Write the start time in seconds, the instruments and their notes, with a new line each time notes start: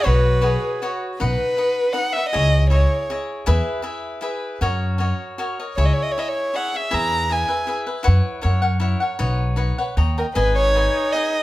0.03 upright bass B1, cavaquinho F#4 B4 C#5 D#5, trumpet F#4, violin B4
0.41 cavaquinho F#4 B4 C#5 D#5, trumpet G#4
0.82 cavaquinho F#4 B4 C#5 D#5, trumpet F#4
1.20 upright bass B1, cavaquinho D#4 B4 D#5 F#5, violin B4
1.57 cavaquinho D#4 B4 D#5 F#5
1.93 cavaquinho D#4 B4 D#5 F#5, violin F#5
2.13 cavaquinho B4 D#5 F#5, violin E5
2.29 cavaquinho E4 G#4, violin D#5
2.34 upright bass C#2, cavaquinho C#5 D#5
2.70 cavaquinho E4 G#4 C#5 D#5, violin C#5
3.10 cavaquinho E4 G#4 C#5 D#5
3.46 upright bass E2, cavaquinho E4 G#4 B4 E5
3.82 cavaquinho E4 G#4 B4 E5
4.21 cavaquinho E4 G#4 B4 E5
4.61 upright bass F#2, cavaquinho F#4 A#4 C#5 D#5
4.98 cavaquinho F#4 A#4 C#5 D#5
5.38 cavaquinho F#4 A#4 C#5 D#5
5.59 cavaquinho A#4 C#5 D#5
5.76 upright bass C#2, cavaquinho E4 G#4 C#5 E5, violin C#5
5.85 violin D#5
5.93 violin C#5
6.02 violin D#5
6.11 violin C#5
6.18 cavaquinho E4 G#4 C#5 E5, violin D#5
6.28 violin C#5
6.54 cavaquinho E4 G#4 C#5 E5, violin F#5
6.74 cavaquinho G#4 C#5 E5, violin E5
6.91 upright bass E2, cavaquinho E4 G#4 B4 E5, violin A#5
7.29 cavaquinho E4 G#4 B4 E5, violin G#5
7.48 cavaquinho G#4 B4 E5
7.67 cavaquinho E4 G#4 B4 E5
7.86 cavaquinho G#4 B4 E5
8.03 cavaquinho E4 B4 C#5 F#5
8.08 upright bass F#2
8.41 upright bass F#2, cavaquinho E4 A#4 C#5 F#5
8.62 cavaquinho A#4 C#5 F#5
8.80 cavaquinho E4 A#4 C#5 F#5
9.00 cavaquinho A#4 C#5 F#5
9.19 upright bass B1, cavaquinho D#4 B4 C#5 F#5
9.56 cavaquinho D#4 B4 C#5 F#5
9.78 cavaquinho B4 C#5 F#5
9.97 upright bass D#2, cavaquinho C#5 D#5 G5 A#5
10.18 violin A#4, cavaquinho D#5 G5 A#5
10.35 upright bass G#1, trumpet D#4, cavaquinho G#4 B4 D#5 G#5, violin B4
10.55 violin C#5
10.75 cavaquinho G#4 B4 D#5 G#5
11.12 cavaquinho G#4 B4 D#5 G#5, violin D#5